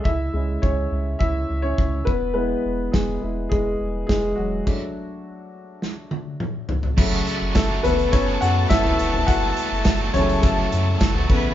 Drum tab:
CC |----------------|----------------|x---------------|x---------------|
HH |----------------|----------------|----------------|--x-x-xxx-x-x-x-|
SD |----------------|----o-------o---|--------o-------|----o-------o---|
T1 |----------------|----------------|----------o-----|----------------|
T2 |----------------|----------------|------------o---|----------------|
FT |----------------|----------------|--------------oo|------o------o-o|
BD |o---o---o---o-o-|----o---o---o---|o---------------|o---o---o---o---|

CC |--------------x-|
HH |x-x-x-xxx-x-x---|
SD |----o-------o---|
T1 |----------------|
T2 |----------------|
FT |------o------o--|
BD |o---o---o---o-o-|